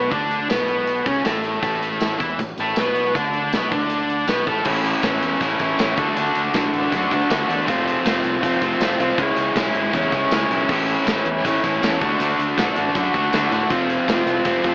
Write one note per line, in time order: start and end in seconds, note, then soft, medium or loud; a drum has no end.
0.00 0.11 B3 medium
0.10 0.47 D2 loud
0.10 0.48 D3 medium
0.10 0.49 D4 medium
0.10 kick medium
0.10 closed hi-hat medium
0.31 closed hi-hat medium
0.50 1.03 B1 medium
0.50 1.05 B2 medium
0.50 1.06 B3 medium
0.50 snare loud
0.50 closed hi-hat medium
0.50 tambourine loud
0.68 closed hi-hat medium
0.87 closed hi-hat medium
1.05 1.24 C#2 medium
1.05 1.24 C#3 medium
1.05 1.24 C#4 medium
1.05 kick loud
1.05 closed hi-hat medium
1.24 1.61 A1 medium
1.24 1.61 A2 medium
1.24 1.62 A3 medium
1.24 snare medium
1.24 closed hi-hat medium
1.24 tambourine loud
1.44 closed hi-hat medium
1.62 2.16 A1 loud
1.62 2.19 A2 medium
1.62 2.19 A3 loud
1.62 kick loud
1.62 closed hi-hat medium
1.83 closed hi-hat medium
2.01 snare loud
2.01 closed hi-hat medium
2.01 tambourine loud
2.19 2.37 E2 medium
2.19 2.38 E3 medium
2.19 2.38 E4 loud
2.19 kick loud
2.19 closed hi-hat medium
2.39 2.56 A1 medium
2.39 2.55 A2 medium
2.39 kick medium
2.39 closed hi-hat medium
2.58 2.75 A1 medium
2.58 2.77 A2 medium
2.58 2.77 A3 medium
2.58 closed hi-hat medium
2.76 3.12 B1 medium
2.76 3.14 B2 medium
2.76 3.15 B3 medium
2.76 snare loud
2.76 closed hi-hat medium
2.76 tambourine loud
2.96 closed hi-hat medium
3.15 3.50 D2 medium
3.15 3.52 D3 medium
3.15 3.52 D4 medium
3.15 kick loud
3.15 closed hi-hat medium
3.33 closed hi-hat medium
3.52 3.71 B1 medium
3.52 3.71 B2 medium
3.52 3.71 B3 medium
3.52 snare loud
3.52 closed hi-hat medium
3.52 tambourine loud
3.71 4.24 D2 medium
3.71 4.27 D3 medium
3.71 4.28 D4 medium
3.71 kick loud
3.71 closed hi-hat medium
3.90 closed hi-hat medium
4.10 closed hi-hat medium
4.27 4.45 B1 medium
4.27 4.46 B2 medium
4.27 4.47 B3 medium
4.27 snare medium
4.27 closed hi-hat medium
4.27 tambourine loud
4.47 4.65 A1 medium
4.47 4.65 A2 medium
4.47 4.66 A3 medium
4.47 kick loud
4.47 closed hi-hat medium
4.65 4.93 A1 loud
4.65 5.23 A2 medium
4.65 5.01 E3 medium
4.65 5.03 A3 medium
4.65 5.03 C#4 loud
4.65 5.03 E4 loud
4.65 kick loud
4.65 crash loud
4.84 closed hi-hat medium
5.02 5.17 A1 medium
5.02 5.40 E3 medium
5.02 5.42 A3 medium
5.02 5.42 C#4 medium
5.02 5.42 E4 medium
5.02 kick medium
5.02 snare loud
5.02 closed hi-hat loud
5.02 tambourine loud
5.14 snare soft
5.22 5.36 E2 medium
5.22 closed hi-hat medium
5.40 5.54 A1 loud
5.40 5.78 E3 medium
5.40 5.62 A3 medium
5.40 5.60 C#4 medium
5.40 5.59 E4 medium
5.40 kick medium
5.40 closed hi-hat loud
5.59 5.74 A1 medium
5.59 5.79 A3 medium
5.59 5.78 C#4 medium
5.59 5.79 E4 medium
5.59 kick medium
5.59 closed hi-hat medium
5.78 5.93 A1 medium
5.78 5.96 A2 medium
5.78 5.97 E3 medium
5.78 5.99 A3 medium
5.78 5.97 C#4 medium
5.78 5.98 E4 loud
5.78 snare loud
5.78 closed hi-hat medium
5.78 tambourine loud
5.89 snare soft
5.97 6.11 D2 medium
5.97 6.15 D3 medium
5.97 6.17 A3 medium
5.97 6.17 D4 medium
5.97 6.17 F#4 medium
5.97 kick loud
5.97 closed hi-hat medium
6.17 6.31 D2 loud
6.17 6.53 D3 medium
6.17 6.55 A3 medium
6.17 6.55 D4 loud
6.17 6.55 F#4 loud
6.17 closed hi-hat loud
6.35 6.49 D2 medium
6.35 closed hi-hat medium
6.54 6.68 B1 medium
6.54 6.92 D3 medium
6.54 6.93 A3 medium
6.54 6.93 D4 medium
6.54 6.94 F#4 medium
6.54 kick medium
6.54 snare loud
6.54 closed hi-hat loud
6.54 tambourine loud
6.73 6.87 A1 medium
6.73 closed hi-hat medium
6.92 7.06 F#2 loud
6.92 7.29 D3 medium
6.92 7.13 A3 medium
6.92 7.13 D4 medium
6.92 7.11 F#4 medium
6.92 kick medium
6.92 closed hi-hat loud
7.11 7.25 D2 medium
7.11 7.29 A3 medium
7.11 7.30 D4 medium
7.11 7.31 F#4 medium
7.11 kick medium
7.11 closed hi-hat medium
7.30 7.44 D2 medium
7.30 7.65 D3 medium
7.30 7.48 A3 loud
7.30 7.47 D4 loud
7.30 7.46 F#4 loud
7.30 snare loud
7.30 closed hi-hat medium
7.30 tambourine loud
7.47 7.62 E2 medium
7.47 7.65 A3 medium
7.47 7.66 D4 medium
7.47 7.66 F#4 medium
7.47 closed hi-hat medium
7.65 7.95 F1 loud
7.65 8.03 F3 loud
7.65 8.04 A3 loud
7.65 8.05 C4 loud
7.65 8.06 F4 medium
7.65 kick loud
7.65 closed hi-hat loud
7.88 closed hi-hat medium
8.04 8.19 F1 loud
8.04 8.41 F3 medium
8.04 8.41 A3 medium
8.04 8.42 C4 medium
8.04 8.43 F4 medium
8.04 kick medium
8.04 snare loud
8.04 closed hi-hat loud
8.04 tambourine loud
8.16 snare soft
8.24 8.38 C2 medium
8.24 closed hi-hat medium
8.42 8.57 F1 loud
8.42 8.79 F3 medium
8.42 8.62 A3 medium
8.42 8.62 C4 medium
8.42 8.60 F4 medium
8.42 kick medium
8.42 closed hi-hat loud
8.61 8.75 F1 medium
8.61 8.80 A3 medium
8.61 8.80 C4 medium
8.61 8.81 F4 medium
8.61 kick medium
8.61 closed hi-hat medium
8.80 8.94 F1 medium
8.80 9.17 F3 medium
8.80 9.01 A3 loud
8.80 9.00 C4 medium
8.80 8.99 F4 loud
8.80 snare loud
8.80 closed hi-hat loud
8.80 tambourine loud
8.92 snare soft
8.99 9.13 C2 medium
8.99 9.19 A3 medium
8.99 9.18 C4 medium
8.99 9.18 F4 medium
8.99 closed hi-hat medium
9.18 9.32 C#2 loud
9.18 9.55 C#3 loud
9.18 9.56 G#3 loud
9.18 9.57 C#4 loud
9.18 9.58 E4 loud
9.18 kick loud
9.18 closed hi-hat medium
9.37 9.51 C#2 medium
9.37 closed hi-hat medium
9.55 9.69 B1 medium
9.55 9.93 C#3 medium
9.55 9.94 G#3 medium
9.55 9.94 C#4 medium
9.55 9.95 E4 medium
9.55 kick medium
9.55 snare loud
9.55 closed hi-hat loud
9.55 tambourine loud
9.67 snare soft
9.74 9.88 G#1 medium
9.74 closed hi-hat medium
9.94 10.07 E2 medium
9.94 10.32 C#3 medium
9.94 10.14 G#3 medium
9.94 10.13 C#4 medium
9.94 10.11 E4 medium
9.94 kick medium
9.94 closed hi-hat medium
10.12 10.26 C#2 medium
10.12 10.32 G#3 medium
10.12 10.33 C#4 medium
10.12 10.34 E4 medium
10.12 kick medium
10.12 closed hi-hat medium
10.31 10.45 C#2 medium
10.31 10.69 C#3 medium
10.31 10.52 G#3 medium
10.31 10.51 C#4 medium
10.31 10.50 E4 medium
10.31 snare loud
10.31 closed hi-hat medium
10.31 tambourine loud
10.50 10.64 B1 medium
10.50 10.70 G#3 medium
10.50 10.69 C#4 medium
10.50 10.69 E4 medium
10.50 closed hi-hat medium
10.69 10.96 A1 loud
10.69 11.27 A2 medium
10.69 11.06 E3 medium
10.69 11.08 A3 medium
10.69 11.08 C#4 loud
10.69 kick loud
10.69 crash medium
10.73 11.09 E4 loud
10.88 closed hi-hat medium
11.06 11.20 A1 medium
11.06 11.44 E3 medium
11.06 11.45 A3 medium
11.06 11.45 C#4 medium
11.06 11.45 E4 medium
11.06 kick medium
11.06 snare loud
11.06 closed hi-hat loud
11.06 tambourine loud
11.25 11.39 E2 medium
11.25 closed hi-hat medium
11.45 11.58 A1 loud
11.45 11.82 E3 medium
11.45 11.66 A3 medium
11.45 11.64 C#4 medium
11.45 11.63 E4 medium
11.45 kick medium
11.45 closed hi-hat loud
11.63 11.77 A1 medium
11.63 11.82 A3 medium
11.63 11.82 C#4 medium
11.63 11.83 E4 medium
11.63 kick medium
11.63 closed hi-hat medium
11.81 12.01 E2 medium
11.81 12.00 A2 medium
11.81 12.00 E3 medium
11.81 12.01 A3 loud
11.81 12.01 C#4 loud
11.81 12.00 E4 loud
11.81 snare loud
11.81 closed hi-hat loud
11.81 tambourine loud
12.00 12.15 D2 medium
12.00 12.18 D3 medium
12.00 12.20 A3 medium
12.00 12.20 D4 medium
12.00 12.21 F#4 medium
12.00 kick loud
12.00 closed hi-hat medium
12.19 12.34 D2 loud
12.19 12.56 D3 medium
12.19 12.58 A3 loud
12.19 12.57 D4 loud
12.19 12.58 F#4 medium
12.19 closed hi-hat loud
12.39 12.53 D2 medium
12.39 closed hi-hat medium
12.57 12.71 B1 medium
12.57 12.94 D3 medium
12.57 12.95 A3 medium
12.57 12.95 D4 medium
12.57 12.96 F#4 medium
12.57 kick medium
12.57 snare loud
12.57 closed hi-hat loud
12.57 tambourine loud
12.76 12.90 A1 medium
12.76 closed hi-hat medium
12.95 13.09 F#2 loud
12.95 13.32 D3 medium
12.95 13.15 A3 medium
12.95 13.14 D4 medium
12.95 13.13 F#4 medium
12.95 kick medium
12.95 closed hi-hat medium
13.14 13.27 D2 medium
13.14 13.33 A3 medium
13.14 13.33 D4 medium
13.14 13.34 F#4 medium
13.14 kick medium
13.14 closed hi-hat medium
13.33 13.47 D2 medium
13.33 13.70 D3 medium
13.33 13.54 A3 loud
13.33 13.52 D4 loud
13.33 13.52 F#4 loud
13.33 snare loud
13.33 closed hi-hat medium
13.33 tambourine loud
13.51 13.65 A2 medium
13.51 13.70 A3 medium
13.51 13.70 D4 medium
13.51 13.70 F#4 medium
13.51 closed hi-hat medium
13.70 13.98 F1 loud
13.70 14.07 F3 medium
13.70 14.08 A3 medium
13.70 14.09 C4 loud
13.70 14.10 F4 loud
13.70 kick loud
13.70 closed hi-hat loud
13.90 closed hi-hat medium
14.07 14.21 F1 medium
14.07 14.43 F3 medium
14.07 14.44 A3 medium
14.07 14.45 C4 medium
14.07 14.46 F4 medium
14.07 kick medium
14.07 snare loud
14.07 closed hi-hat loud
14.07 tambourine loud
14.19 snare soft
14.26 14.40 C2 medium
14.26 closed hi-hat medium
14.44 14.59 F1 loud
14.44 14.75 F3 medium
14.44 14.66 A3 medium
14.44 14.64 C4 medium
14.44 14.63 F4 medium
14.44 kick medium
14.44 closed hi-hat loud
14.64 14.75 F1 medium
14.64 14.75 A3 medium
14.64 14.75 C4 medium
14.64 14.75 F4 medium
14.64 kick medium
14.64 closed hi-hat medium